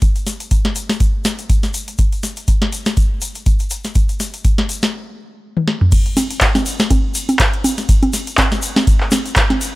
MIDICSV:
0, 0, Header, 1, 2, 480
1, 0, Start_track
1, 0, Tempo, 491803
1, 20, Time_signature, 4, 2, 24, 8
1, 9518, End_track
2, 0, Start_track
2, 0, Title_t, "Drums"
2, 19, Note_on_c, 9, 42, 75
2, 19, Note_on_c, 9, 82, 49
2, 20, Note_on_c, 9, 36, 123
2, 116, Note_off_c, 9, 42, 0
2, 117, Note_off_c, 9, 36, 0
2, 117, Note_off_c, 9, 82, 0
2, 153, Note_on_c, 9, 42, 34
2, 153, Note_on_c, 9, 82, 40
2, 251, Note_off_c, 9, 42, 0
2, 251, Note_off_c, 9, 82, 0
2, 259, Note_on_c, 9, 38, 31
2, 259, Note_on_c, 9, 42, 76
2, 261, Note_on_c, 9, 82, 84
2, 357, Note_off_c, 9, 38, 0
2, 357, Note_off_c, 9, 42, 0
2, 359, Note_off_c, 9, 82, 0
2, 393, Note_on_c, 9, 42, 52
2, 395, Note_on_c, 9, 82, 41
2, 491, Note_off_c, 9, 42, 0
2, 492, Note_off_c, 9, 82, 0
2, 499, Note_on_c, 9, 42, 80
2, 500, Note_on_c, 9, 36, 100
2, 501, Note_on_c, 9, 82, 51
2, 596, Note_off_c, 9, 42, 0
2, 597, Note_off_c, 9, 36, 0
2, 598, Note_off_c, 9, 82, 0
2, 633, Note_on_c, 9, 38, 58
2, 633, Note_on_c, 9, 42, 38
2, 731, Note_off_c, 9, 38, 0
2, 731, Note_off_c, 9, 42, 0
2, 739, Note_on_c, 9, 42, 78
2, 739, Note_on_c, 9, 82, 86
2, 836, Note_off_c, 9, 82, 0
2, 837, Note_off_c, 9, 42, 0
2, 873, Note_on_c, 9, 38, 73
2, 873, Note_on_c, 9, 42, 52
2, 882, Note_on_c, 9, 82, 35
2, 971, Note_off_c, 9, 38, 0
2, 971, Note_off_c, 9, 42, 0
2, 979, Note_off_c, 9, 82, 0
2, 979, Note_on_c, 9, 42, 72
2, 980, Note_on_c, 9, 36, 118
2, 980, Note_on_c, 9, 82, 49
2, 1077, Note_off_c, 9, 36, 0
2, 1077, Note_off_c, 9, 42, 0
2, 1078, Note_off_c, 9, 82, 0
2, 1219, Note_on_c, 9, 82, 94
2, 1220, Note_on_c, 9, 38, 73
2, 1220, Note_on_c, 9, 42, 73
2, 1316, Note_off_c, 9, 82, 0
2, 1317, Note_off_c, 9, 38, 0
2, 1317, Note_off_c, 9, 42, 0
2, 1354, Note_on_c, 9, 42, 49
2, 1354, Note_on_c, 9, 82, 43
2, 1452, Note_off_c, 9, 42, 0
2, 1452, Note_off_c, 9, 82, 0
2, 1460, Note_on_c, 9, 36, 104
2, 1460, Note_on_c, 9, 42, 78
2, 1465, Note_on_c, 9, 82, 56
2, 1557, Note_off_c, 9, 36, 0
2, 1557, Note_off_c, 9, 42, 0
2, 1563, Note_off_c, 9, 82, 0
2, 1594, Note_on_c, 9, 38, 35
2, 1594, Note_on_c, 9, 42, 35
2, 1595, Note_on_c, 9, 82, 39
2, 1691, Note_off_c, 9, 38, 0
2, 1691, Note_off_c, 9, 42, 0
2, 1692, Note_off_c, 9, 82, 0
2, 1698, Note_on_c, 9, 82, 88
2, 1699, Note_on_c, 9, 42, 80
2, 1796, Note_off_c, 9, 82, 0
2, 1797, Note_off_c, 9, 42, 0
2, 1834, Note_on_c, 9, 42, 50
2, 1836, Note_on_c, 9, 82, 39
2, 1931, Note_off_c, 9, 42, 0
2, 1933, Note_off_c, 9, 82, 0
2, 1933, Note_on_c, 9, 82, 51
2, 1939, Note_on_c, 9, 42, 71
2, 1940, Note_on_c, 9, 36, 116
2, 2031, Note_off_c, 9, 82, 0
2, 2037, Note_off_c, 9, 36, 0
2, 2037, Note_off_c, 9, 42, 0
2, 2074, Note_on_c, 9, 42, 33
2, 2077, Note_on_c, 9, 82, 40
2, 2171, Note_off_c, 9, 42, 0
2, 2174, Note_off_c, 9, 82, 0
2, 2179, Note_on_c, 9, 38, 36
2, 2179, Note_on_c, 9, 42, 71
2, 2179, Note_on_c, 9, 82, 94
2, 2277, Note_off_c, 9, 38, 0
2, 2277, Note_off_c, 9, 42, 0
2, 2277, Note_off_c, 9, 82, 0
2, 2308, Note_on_c, 9, 82, 37
2, 2313, Note_on_c, 9, 42, 50
2, 2406, Note_off_c, 9, 82, 0
2, 2411, Note_off_c, 9, 42, 0
2, 2417, Note_on_c, 9, 82, 51
2, 2420, Note_on_c, 9, 36, 96
2, 2420, Note_on_c, 9, 42, 77
2, 2515, Note_off_c, 9, 82, 0
2, 2517, Note_off_c, 9, 36, 0
2, 2517, Note_off_c, 9, 42, 0
2, 2554, Note_on_c, 9, 38, 60
2, 2554, Note_on_c, 9, 42, 37
2, 2652, Note_off_c, 9, 38, 0
2, 2652, Note_off_c, 9, 42, 0
2, 2659, Note_on_c, 9, 42, 70
2, 2664, Note_on_c, 9, 82, 84
2, 2757, Note_off_c, 9, 42, 0
2, 2762, Note_off_c, 9, 82, 0
2, 2788, Note_on_c, 9, 82, 40
2, 2794, Note_on_c, 9, 38, 74
2, 2794, Note_on_c, 9, 42, 47
2, 2885, Note_off_c, 9, 82, 0
2, 2891, Note_off_c, 9, 38, 0
2, 2891, Note_off_c, 9, 42, 0
2, 2899, Note_on_c, 9, 42, 75
2, 2900, Note_on_c, 9, 36, 120
2, 2900, Note_on_c, 9, 82, 54
2, 2997, Note_off_c, 9, 36, 0
2, 2997, Note_off_c, 9, 42, 0
2, 2998, Note_off_c, 9, 82, 0
2, 3137, Note_on_c, 9, 82, 85
2, 3139, Note_on_c, 9, 42, 72
2, 3234, Note_off_c, 9, 82, 0
2, 3237, Note_off_c, 9, 42, 0
2, 3268, Note_on_c, 9, 82, 37
2, 3273, Note_on_c, 9, 42, 45
2, 3365, Note_off_c, 9, 82, 0
2, 3371, Note_off_c, 9, 42, 0
2, 3379, Note_on_c, 9, 42, 78
2, 3380, Note_on_c, 9, 36, 108
2, 3382, Note_on_c, 9, 82, 54
2, 3477, Note_off_c, 9, 36, 0
2, 3477, Note_off_c, 9, 42, 0
2, 3480, Note_off_c, 9, 82, 0
2, 3508, Note_on_c, 9, 82, 36
2, 3514, Note_on_c, 9, 42, 36
2, 3605, Note_off_c, 9, 82, 0
2, 3612, Note_off_c, 9, 42, 0
2, 3612, Note_on_c, 9, 82, 99
2, 3620, Note_on_c, 9, 42, 78
2, 3710, Note_off_c, 9, 82, 0
2, 3717, Note_off_c, 9, 42, 0
2, 3750, Note_on_c, 9, 82, 38
2, 3754, Note_on_c, 9, 38, 33
2, 3754, Note_on_c, 9, 42, 51
2, 3848, Note_off_c, 9, 82, 0
2, 3851, Note_off_c, 9, 38, 0
2, 3851, Note_off_c, 9, 42, 0
2, 3855, Note_on_c, 9, 82, 56
2, 3859, Note_on_c, 9, 42, 70
2, 3860, Note_on_c, 9, 36, 117
2, 3953, Note_off_c, 9, 82, 0
2, 3957, Note_off_c, 9, 36, 0
2, 3957, Note_off_c, 9, 42, 0
2, 3992, Note_on_c, 9, 82, 37
2, 3993, Note_on_c, 9, 42, 34
2, 4089, Note_off_c, 9, 82, 0
2, 4091, Note_off_c, 9, 42, 0
2, 4099, Note_on_c, 9, 38, 36
2, 4099, Note_on_c, 9, 42, 72
2, 4101, Note_on_c, 9, 82, 91
2, 4196, Note_off_c, 9, 38, 0
2, 4196, Note_off_c, 9, 42, 0
2, 4199, Note_off_c, 9, 82, 0
2, 4233, Note_on_c, 9, 42, 49
2, 4237, Note_on_c, 9, 82, 38
2, 4331, Note_off_c, 9, 42, 0
2, 4335, Note_off_c, 9, 82, 0
2, 4339, Note_on_c, 9, 36, 95
2, 4339, Note_on_c, 9, 42, 72
2, 4341, Note_on_c, 9, 82, 50
2, 4437, Note_off_c, 9, 36, 0
2, 4437, Note_off_c, 9, 42, 0
2, 4439, Note_off_c, 9, 82, 0
2, 4473, Note_on_c, 9, 38, 62
2, 4473, Note_on_c, 9, 42, 35
2, 4570, Note_off_c, 9, 38, 0
2, 4570, Note_off_c, 9, 42, 0
2, 4578, Note_on_c, 9, 42, 74
2, 4587, Note_on_c, 9, 82, 85
2, 4676, Note_off_c, 9, 42, 0
2, 4685, Note_off_c, 9, 82, 0
2, 4706, Note_on_c, 9, 82, 39
2, 4713, Note_on_c, 9, 38, 78
2, 4713, Note_on_c, 9, 42, 47
2, 4804, Note_off_c, 9, 82, 0
2, 4811, Note_off_c, 9, 38, 0
2, 4811, Note_off_c, 9, 42, 0
2, 5433, Note_on_c, 9, 48, 51
2, 5531, Note_off_c, 9, 48, 0
2, 5539, Note_on_c, 9, 38, 76
2, 5637, Note_off_c, 9, 38, 0
2, 5673, Note_on_c, 9, 45, 78
2, 5771, Note_off_c, 9, 45, 0
2, 5778, Note_on_c, 9, 82, 54
2, 5779, Note_on_c, 9, 36, 121
2, 5779, Note_on_c, 9, 42, 79
2, 5779, Note_on_c, 9, 49, 104
2, 5779, Note_on_c, 9, 51, 53
2, 5876, Note_off_c, 9, 82, 0
2, 5877, Note_off_c, 9, 36, 0
2, 5877, Note_off_c, 9, 42, 0
2, 5877, Note_off_c, 9, 49, 0
2, 5877, Note_off_c, 9, 51, 0
2, 5913, Note_on_c, 9, 42, 39
2, 6011, Note_off_c, 9, 42, 0
2, 6019, Note_on_c, 9, 38, 36
2, 6019, Note_on_c, 9, 46, 101
2, 6019, Note_on_c, 9, 51, 82
2, 6019, Note_on_c, 9, 63, 54
2, 6022, Note_on_c, 9, 82, 92
2, 6117, Note_off_c, 9, 38, 0
2, 6117, Note_off_c, 9, 46, 0
2, 6117, Note_off_c, 9, 51, 0
2, 6117, Note_off_c, 9, 63, 0
2, 6119, Note_off_c, 9, 82, 0
2, 6153, Note_on_c, 9, 42, 59
2, 6156, Note_on_c, 9, 82, 41
2, 6251, Note_off_c, 9, 42, 0
2, 6254, Note_off_c, 9, 82, 0
2, 6255, Note_on_c, 9, 39, 127
2, 6256, Note_on_c, 9, 82, 46
2, 6259, Note_on_c, 9, 36, 105
2, 6259, Note_on_c, 9, 42, 84
2, 6259, Note_on_c, 9, 51, 56
2, 6352, Note_off_c, 9, 39, 0
2, 6354, Note_off_c, 9, 82, 0
2, 6357, Note_off_c, 9, 36, 0
2, 6357, Note_off_c, 9, 42, 0
2, 6357, Note_off_c, 9, 51, 0
2, 6394, Note_on_c, 9, 38, 61
2, 6394, Note_on_c, 9, 42, 40
2, 6394, Note_on_c, 9, 63, 59
2, 6397, Note_on_c, 9, 82, 36
2, 6491, Note_off_c, 9, 38, 0
2, 6491, Note_off_c, 9, 42, 0
2, 6491, Note_off_c, 9, 63, 0
2, 6495, Note_off_c, 9, 82, 0
2, 6498, Note_on_c, 9, 82, 81
2, 6499, Note_on_c, 9, 46, 92
2, 6499, Note_on_c, 9, 51, 80
2, 6596, Note_off_c, 9, 82, 0
2, 6597, Note_off_c, 9, 46, 0
2, 6597, Note_off_c, 9, 51, 0
2, 6631, Note_on_c, 9, 82, 42
2, 6634, Note_on_c, 9, 38, 79
2, 6634, Note_on_c, 9, 42, 52
2, 6729, Note_off_c, 9, 82, 0
2, 6731, Note_off_c, 9, 38, 0
2, 6731, Note_off_c, 9, 42, 0
2, 6739, Note_on_c, 9, 42, 84
2, 6739, Note_on_c, 9, 51, 56
2, 6739, Note_on_c, 9, 63, 57
2, 6740, Note_on_c, 9, 36, 116
2, 6743, Note_on_c, 9, 82, 52
2, 6837, Note_off_c, 9, 36, 0
2, 6837, Note_off_c, 9, 42, 0
2, 6837, Note_off_c, 9, 51, 0
2, 6837, Note_off_c, 9, 63, 0
2, 6841, Note_off_c, 9, 82, 0
2, 6975, Note_on_c, 9, 82, 94
2, 6979, Note_on_c, 9, 46, 111
2, 6979, Note_on_c, 9, 51, 76
2, 7072, Note_off_c, 9, 82, 0
2, 7077, Note_off_c, 9, 46, 0
2, 7077, Note_off_c, 9, 51, 0
2, 7113, Note_on_c, 9, 42, 53
2, 7113, Note_on_c, 9, 63, 54
2, 7115, Note_on_c, 9, 82, 46
2, 7211, Note_off_c, 9, 42, 0
2, 7211, Note_off_c, 9, 63, 0
2, 7213, Note_off_c, 9, 82, 0
2, 7215, Note_on_c, 9, 39, 127
2, 7218, Note_on_c, 9, 82, 57
2, 7220, Note_on_c, 9, 36, 111
2, 7220, Note_on_c, 9, 42, 84
2, 7220, Note_on_c, 9, 51, 59
2, 7313, Note_off_c, 9, 39, 0
2, 7315, Note_off_c, 9, 82, 0
2, 7317, Note_off_c, 9, 36, 0
2, 7317, Note_off_c, 9, 42, 0
2, 7317, Note_off_c, 9, 51, 0
2, 7354, Note_on_c, 9, 42, 39
2, 7452, Note_off_c, 9, 42, 0
2, 7460, Note_on_c, 9, 46, 96
2, 7460, Note_on_c, 9, 51, 83
2, 7460, Note_on_c, 9, 63, 62
2, 7467, Note_on_c, 9, 82, 98
2, 7557, Note_off_c, 9, 46, 0
2, 7557, Note_off_c, 9, 51, 0
2, 7557, Note_off_c, 9, 63, 0
2, 7564, Note_off_c, 9, 82, 0
2, 7591, Note_on_c, 9, 82, 39
2, 7593, Note_on_c, 9, 38, 36
2, 7593, Note_on_c, 9, 42, 55
2, 7689, Note_off_c, 9, 82, 0
2, 7691, Note_off_c, 9, 38, 0
2, 7691, Note_off_c, 9, 42, 0
2, 7699, Note_on_c, 9, 42, 81
2, 7699, Note_on_c, 9, 51, 56
2, 7700, Note_on_c, 9, 36, 125
2, 7704, Note_on_c, 9, 82, 59
2, 7797, Note_off_c, 9, 36, 0
2, 7797, Note_off_c, 9, 42, 0
2, 7797, Note_off_c, 9, 51, 0
2, 7801, Note_off_c, 9, 82, 0
2, 7833, Note_on_c, 9, 42, 38
2, 7833, Note_on_c, 9, 63, 62
2, 7931, Note_off_c, 9, 42, 0
2, 7931, Note_off_c, 9, 63, 0
2, 7938, Note_on_c, 9, 82, 96
2, 7939, Note_on_c, 9, 38, 36
2, 7939, Note_on_c, 9, 46, 112
2, 7939, Note_on_c, 9, 51, 78
2, 8036, Note_off_c, 9, 82, 0
2, 8037, Note_off_c, 9, 38, 0
2, 8037, Note_off_c, 9, 46, 0
2, 8037, Note_off_c, 9, 51, 0
2, 8073, Note_on_c, 9, 42, 55
2, 8076, Note_on_c, 9, 82, 40
2, 8171, Note_off_c, 9, 42, 0
2, 8174, Note_off_c, 9, 82, 0
2, 8175, Note_on_c, 9, 39, 127
2, 8179, Note_on_c, 9, 42, 84
2, 8179, Note_on_c, 9, 51, 53
2, 8179, Note_on_c, 9, 63, 62
2, 8180, Note_on_c, 9, 36, 107
2, 8182, Note_on_c, 9, 82, 57
2, 8273, Note_off_c, 9, 39, 0
2, 8277, Note_off_c, 9, 36, 0
2, 8277, Note_off_c, 9, 42, 0
2, 8277, Note_off_c, 9, 51, 0
2, 8277, Note_off_c, 9, 63, 0
2, 8279, Note_off_c, 9, 82, 0
2, 8312, Note_on_c, 9, 82, 37
2, 8314, Note_on_c, 9, 38, 63
2, 8314, Note_on_c, 9, 42, 40
2, 8410, Note_off_c, 9, 82, 0
2, 8411, Note_off_c, 9, 38, 0
2, 8411, Note_off_c, 9, 42, 0
2, 8414, Note_on_c, 9, 82, 101
2, 8419, Note_on_c, 9, 46, 95
2, 8419, Note_on_c, 9, 51, 74
2, 8511, Note_off_c, 9, 82, 0
2, 8517, Note_off_c, 9, 46, 0
2, 8517, Note_off_c, 9, 51, 0
2, 8554, Note_on_c, 9, 38, 81
2, 8554, Note_on_c, 9, 42, 53
2, 8554, Note_on_c, 9, 63, 57
2, 8555, Note_on_c, 9, 82, 38
2, 8651, Note_off_c, 9, 38, 0
2, 8651, Note_off_c, 9, 42, 0
2, 8651, Note_off_c, 9, 63, 0
2, 8652, Note_off_c, 9, 82, 0
2, 8659, Note_on_c, 9, 42, 83
2, 8659, Note_on_c, 9, 51, 57
2, 8660, Note_on_c, 9, 36, 125
2, 8666, Note_on_c, 9, 82, 53
2, 8757, Note_off_c, 9, 36, 0
2, 8757, Note_off_c, 9, 42, 0
2, 8757, Note_off_c, 9, 51, 0
2, 8764, Note_off_c, 9, 82, 0
2, 8790, Note_on_c, 9, 39, 39
2, 8887, Note_off_c, 9, 39, 0
2, 8895, Note_on_c, 9, 82, 92
2, 8899, Note_on_c, 9, 38, 82
2, 8899, Note_on_c, 9, 46, 108
2, 8899, Note_on_c, 9, 51, 74
2, 8899, Note_on_c, 9, 63, 60
2, 8992, Note_off_c, 9, 82, 0
2, 8997, Note_off_c, 9, 38, 0
2, 8997, Note_off_c, 9, 46, 0
2, 8997, Note_off_c, 9, 51, 0
2, 8997, Note_off_c, 9, 63, 0
2, 9034, Note_on_c, 9, 42, 50
2, 9038, Note_on_c, 9, 82, 42
2, 9131, Note_off_c, 9, 42, 0
2, 9134, Note_off_c, 9, 82, 0
2, 9134, Note_on_c, 9, 82, 60
2, 9136, Note_on_c, 9, 39, 127
2, 9139, Note_on_c, 9, 36, 111
2, 9140, Note_on_c, 9, 42, 88
2, 9140, Note_on_c, 9, 51, 53
2, 9232, Note_off_c, 9, 82, 0
2, 9233, Note_off_c, 9, 39, 0
2, 9237, Note_off_c, 9, 36, 0
2, 9237, Note_off_c, 9, 42, 0
2, 9237, Note_off_c, 9, 51, 0
2, 9274, Note_on_c, 9, 38, 37
2, 9274, Note_on_c, 9, 42, 37
2, 9274, Note_on_c, 9, 63, 61
2, 9372, Note_off_c, 9, 38, 0
2, 9372, Note_off_c, 9, 42, 0
2, 9372, Note_off_c, 9, 63, 0
2, 9380, Note_on_c, 9, 46, 102
2, 9380, Note_on_c, 9, 51, 77
2, 9380, Note_on_c, 9, 82, 90
2, 9478, Note_off_c, 9, 46, 0
2, 9478, Note_off_c, 9, 51, 0
2, 9478, Note_off_c, 9, 82, 0
2, 9518, End_track
0, 0, End_of_file